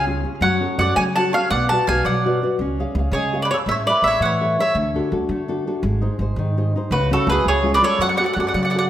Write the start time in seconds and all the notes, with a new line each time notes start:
Already playing: C#2 C#3
0.06 C#4 F4 G#4
0.24 C#4 F4 G#4
0.41 F#2 F#3 C#5 F#5
0.60 C#4 F#4 A4
0.78 F#2 C#4 F#4 A4 D5 F#5
0.96 C#3 F#3 C#5 G#5
1.16 C#4 F#4 A4 F#5 A5
1.33 C#4 F#4 A4 C#5 F5
1.51 B1 B3 D5 F#5
1.69 F#4 B4 D5 F#5 A5
1.87 B1 F#4 B4 D5 F5 G#5
2.04 B2 F#3 D5 F#5
2.26 F#4 B4 D5
2.43 F#4 B4 D5
2.59 C#2 C#4
2.79 G#4 C#5 F5
2.95 C#2 G#4 C#5
2.99 F5
3.12 C#3 G#3 G#4 C#5
3.33 G#4 C#5 F5
3.42 B4 D5
3.51 G#4 A4 C#5 F5
3.66 A1 A3 E5
3.71 C#5
3.86 A4 B4 C#5 D5 E5
4.02 A1 A4 C#5 E5
4.07 C#5
4.20 A2 E3 F#5
4.25 C#5
4.41 A4 C#5 E5
4.59 A4 C#5 E5
4.75 D2 D3
4.95 D4 F#4 A4
5.12 D2 D4 F#4 A4
5.29 D3 A3
5.48 D4 F#4 A4
5.67 D4 F#4 A4
5.83 G#1 G#3
6.01 D#4 G#4 C5
6.19 G#1 D#4 G#4 C5
6.36 G#2 D#3
6.57 D#4 G#4 C5
6.76 D#4 G#4 C5
6.91 C#2 C#3 F#4 B4
7.11 A3 C#4 F#4 A4
7.27 C#2 A3 C#4 F#4 B4
7.32 G#4
7.45 C#2 C#3 G#4 C#5
7.63 G#3 C#4 F4
7.74 B4 D5
7.82 G#3 C#4 F4 A4 C#5
7.98 F#2 F#3 C#5 F#5
8.09 D5 F#5
8.17 F#4 G#4 A4 D5 F#5
8.24 D5 F#5
8.33 F#2 D5 F#5
8.38 F#4 G#4 A4 D5 F#5
8.47 D5 F#5
8.54 C#3 F#3 D5 F#5
8.63 D5 F#5
8.70 D5 F#5
8.74 F#4 G#4 A4
8.79 D5 F#5